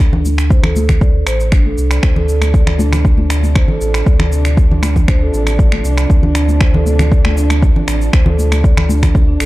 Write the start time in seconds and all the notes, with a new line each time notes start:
0.00 D2, finger snap, kick, shaker
0.13 D4, low conga
0.25 high conga, shaker
0.38 finger snap, shaker
0.50 C5, kick, shaker
0.63 A4, finger snap, low conga
0.76 A4, high conga, shaker
0.89 finger snap, kick, low conga, shaker
1.01 D5, kick, shaker
1.27 A1 C5, finger snap, shaker
1.40 shaker
1.52 D4, finger snap, kick, shaker
1.65 A4, high conga
1.78 C2, shaker
1.91 D5, finger snap, shaker
2.03 D2 C3 F3 D4 C5, finger snap, kick, shaker
2.16 A4, low conga
2.28 A4, shaker
2.42 finger snap, high conga, shaker
2.54 D5, kick, shaker
2.67 finger snap, low conga
2.79 D4, high conga, shaker
2.93 finger snap, low conga, shaker
3.05 kick, shaker
3.18 D4, high conga
3.30 finger snap, shaker
3.43 high conga, shaker
3.56 C5, finger snap, kick, shaker
3.68 A4, low conga
3.81 A1 A4, shaker
3.94 finger snap, shaker
4.06 D2 D5, kick, shaker
4.19 finger snap, low conga
4.32 D4, shaker
4.45 finger snap, shaker
4.57 kick, shaker
4.71 D4, low conga
4.82 finger snap, high conga, shaker
4.96 kick, low conga, shaker
5.08 C5, finger snap, kick, shaker
5.21 A4
5.34 A1 A4, shaker
5.47 finger snap, shaker
5.59 D5, kick, shaker
5.72 finger snap, high conga
5.84 C2 D4, shaker
5.98 finger snap, shaker
6.10 D2, kick, shaker
6.23 D4, low conga
6.35 finger snap, shaker
6.49 high conga, shaker
6.61 C5, finger snap, kick, shaker
6.74 A4, low conga
6.86 A4, high conga, shaker
6.99 finger snap, low conga, shaker
7.12 D5, kick, shaker
7.25 finger snap, high conga
7.37 D4, shaker
7.50 finger snap, high conga, shaker
7.62 kick, shaker
7.76 D4, low conga
7.88 A1, finger snap, shaker
8.01 shaker
8.13 D2 C5, finger snap, kick, shaker
8.26 A4, low conga
8.39 A4, high conga, shaker
8.52 finger snap, high conga, shaker
8.64 D5, kick, shaker
8.77 finger snap, low conga
8.89 D4, high conga, shaker
9.03 finger snap, kick, low conga, shaker
9.15 kick, shaker
9.28 D4
9.40 A1 A4, finger snap, shaker